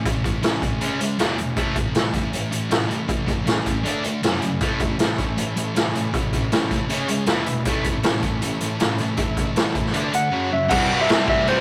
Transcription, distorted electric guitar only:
0.06 A2 E3
0.24 A2 E3
0.43 A2 E3
0.63 A2 E3
0.81 C#3 G#3 C#4
1.00 C#3 G#3
1.18 E2 B2 E3
1.38 E2 B2
1.57 A2 E3 A3
1.75 A2 E3
1.96 A2 E3
2.15 A2 E3
2.33 A2 E3
2.51 A2 E3
2.70 A2 E3
2.89 A2 E3
3.07 A2 E3
3.26 A2 E3
3.46 A2 E3
3.65 A2 E3
3.84 D3 A3 D4
4.04 D3 A3
4.23 F#2 C#3 F#3
4.42 F#2 C#3
4.61 A2 E3 A3
4.81 A2 E3
4.99 A2 E3
5.19 A2 E3
5.37 A2 E3
5.56 A2 E3
5.75 A2 E3
5.95 A2 E3
6.13 A2 E3
6.34 A2 E3
6.52 A2 E3
6.72 A2 E3
6.89 C#3 G#3 C#4
7.09 C#3 G#3
7.27 E2 B2 E3
7.47 E2 B2
7.66 A2 E3 A3
7.86 A2 E3
8.04 A2 E3
8.24 A2 E3
8.42 A2 E3
8.61 A2 E3
8.81 A2 E3
8.99 A2 E3
9.18 A2 E3
9.39 A2 E3
9.56 A2 E3
9.75 A2 E3
9.93 D3 A3 D4
10.13 D3 A3
10.31 F#2 C#3 F#3
10.51 F#2 C#3
10.69 C3 G3
10.73 C4
10.88 C4
10.93 G3
11.07 C3 G3
11.12 C4
11.27 C4
11.32 G3
11.46 C3 G3
11.51 C4

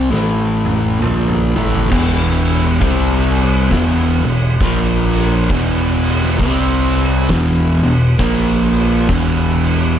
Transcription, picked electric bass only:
0.13 A1
1.03 A#1
1.56 A1
1.92 E1
2.81 C2
3.71 E1
4.25 E1
4.61 A#1
5.50 E1
6.40 C2
7.30 E1
7.83 E1
8.19 A#1
9.09 E1

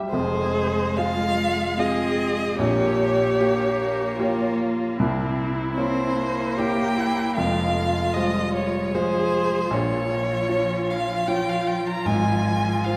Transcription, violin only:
0.09 C5
0.97 F5
1.79 D#5
2.59 C#5
5.75 C5
6.58 G5
7.36 F5
8.14 D#5
8.55 C#5
8.95 C5
9.73 C#5
10.90 F5
11.28 G5
11.49 F5
11.67 G5
11.87 A#5
12.06 G#5
12.84 F5

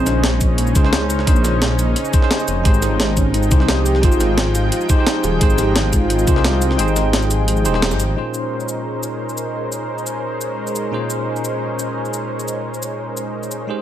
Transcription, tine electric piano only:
Already playing: G#3 C#4 D#4 G#4 C5
0.75 C#4 D#4 G#4 C5
0.83 C#4 D#4 G#4 C5
1.25 C#4 D#4 G#4 C5
2.12 C#4 D#4 G#4 C5
2.21 C#4 D#4 G#4 C5
2.64 D#4 G4 G#4 C5
3.51 D#4 G4 G#4 C5
3.59 G#3 D#4 G4 C5
4.02 D#4 G4 G#4 C5
4.89 D#4 G4 G#4 C5
4.97 D#4 G4 G#4 C5
5.39 D#4 G4 G#4 C5
6.27 D#4 G4 G#4 C5
6.35 D#4 G4 G#4 C5
6.77 D#4 G#4 C5 G5
7.64 D#4 G4 G#4 C5
7.72 D#4 G4 G#4 C5
8.15 A#2 C#4 D#4 F4 G#4 C5
10.91 A#2 C#4 D#4 F4 G#4 C5
13.67 G#3 D#4 G4 G#4 C5

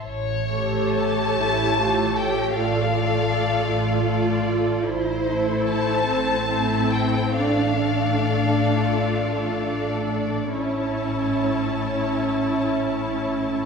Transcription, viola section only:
0.51 A3 G4
1.79 A3 G4
2.56 A3 F4
2.93 A3 F4
4.06 A3 F4
5.27 A3 E4
6.49 A3 E4
7.36 A3 D4
7.81 A3 D4
9.35 A3 D4
10.53 C#4 E4

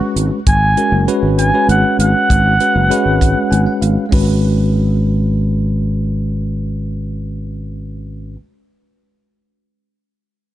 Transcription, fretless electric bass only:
0.16 G#1
0.47 G#1
0.92 F#1
1.23 G#1
1.69 G#1
1.99 G#1
2.30 G#1
2.76 F#1
3.06 G#1
3.52 G#1
3.82 G#1
4.12 G#1

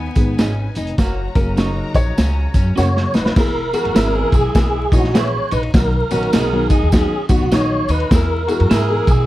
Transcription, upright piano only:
0.16 D#3 G#3 B3
1.35 C#3 F#3 A#3 A#4
1.96 C#5
2.78 C#3 F#3 A#3 F#5
3.37 E3 G#3 B3 E4 G#4
3.73 E3 G#3 B3 E4 G#4
4.14 E3 G#3 B3 E4 G#4
4.55 E3 G#3 B3 E4 A#4
4.92 E3 G#3 B3 E4 G#4
5.14 E3 G#3 B3 E4 G#4
5.74 D#3 F#3 B3 D#4 F#4
6.11 D#3 F#3 B3 D#4 F#4
6.52 D#3 F#3 B3 D#4 F#4
6.92 D#3 F#3 B3 D#4 F#4
7.29 D#3 F#3 B3 D#4 F#4
7.52 D#3 F#3 B3 D#4 F#4
8.12 E3 G#3 B3 E4 G#4
8.49 E3 G#3 B3 E4 G#4
8.90 E3 G#3 B3 E4 G#4

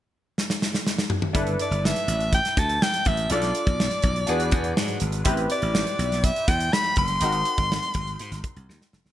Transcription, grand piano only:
1.33 D4 E4 A4 B4
3.30 D4 F4 A4 D5
4.27 D4 F#4 G#4 B4
5.24 C4 E4 G4 B4
7.21 C4 D#4 F#4 A#4

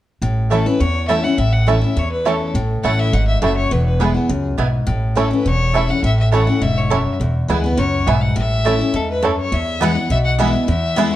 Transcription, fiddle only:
0.51 A4
0.66 B4
0.80 C#5
1.08 E5
1.23 F#5
1.38 E5
1.53 F#5
1.68 E5
1.98 C#5
2.12 B4
2.28 A4
2.84 F#5
2.99 E5
3.13 F#5
3.27 E5
3.43 E5
3.57 C#5
3.72 B4
3.86 B4
4.01 G#4
5.19 A4
5.33 B4
5.47 C#5
5.77 E5
5.90 F#5
6.04 E5
6.19 E5
6.33 F#5
6.62 E5
6.78 C#5
6.94 E5
7.50 G#4
7.65 B4
7.79 C#5
8.07 E5
8.22 F#5
8.37 E5
8.96 A4
9.11 B4
9.24 A4
9.40 C#5
9.54 E5
9.84 F#5
10.11 E5
10.25 F#5
10.40 E5
10.69 E5

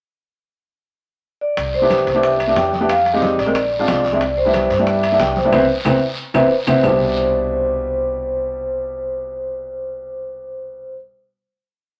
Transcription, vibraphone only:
1.41 D5
1.74 C5
2.23 E5
2.57 G5
2.89 F5
3.19 D5 D#5
3.39 D5
4.05 D5
4.37 C5
4.87 E5
5.20 G5
5.36 C5
5.53 B4 C5 E5
5.85 B4 C5 E5
6.35 B4 C5 E5
6.68 B4 C5 E5
6.84 C5

